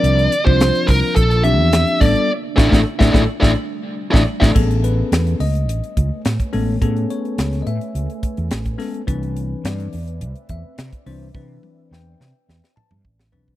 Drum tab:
CC |----------------|----------------|x---------------|----------------|
HH |xxx-xxo-xxx-xxox|----------------|-xx-xxoxxxx-xxo-|xxxxxxxxxxxxxxox|
SD |----o-------o---|--oo-oo-o----o-o|----o-------o---|----oo------o-o-|
T1 |----------------|----------------|----------------|----------------|
T2 |----------------|----------------|----------------|----------------|
FT |----------------|----------------|----------------|----------------|
BD |---o--o-o-----o-|--oo-oo-o----o-o|o---------o--o--|o---------o--o--|

CC |----------------|----------------|
HH |xxx-xxoxxxx-xxo-|----------------|
SD |----o-------o---|----o-o-oo---o--|
T1 |----------------|o-o-------------|
T2 |----------------|----------oo----|
FT |----------------|--------------o-|
BD |o---------o--o--|o-----------o--o|